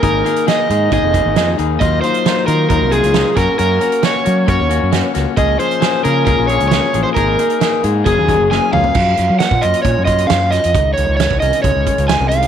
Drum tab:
CC |----------------|----------------|----------------|----------------|
HH |x-xxx-x-x-x-x-x-|x-xxx-x-x-xxx-x-|x-xxx-x-x-x-x-x-|x-xxx-x-x-xxx-x-|
SD |----o-------o---|----o-------o-o-|----o-------o-o-|----o-------o---|
T2 |----------------|----------------|----------------|----------------|
FT |----------------|----------------|----------------|----------------|
BD |o-------o-o-----|o-------o-----o-|--------o-------|o-------o-------|

CC |----------------|x---------------|----------------|
HH |x-xxx-x-x-x-----|--x-x-xxx-xxx-xx|x-x-x-xxx-xxx-xx|
SD |----o-------o---|----o-------o-o-|----o-------o---|
T2 |--------------o-|----------------|----------------|
FT |---------------o|----------------|----------------|
BD |o-------o-o-----|o----o--o-o-----|o----o--o-o-----|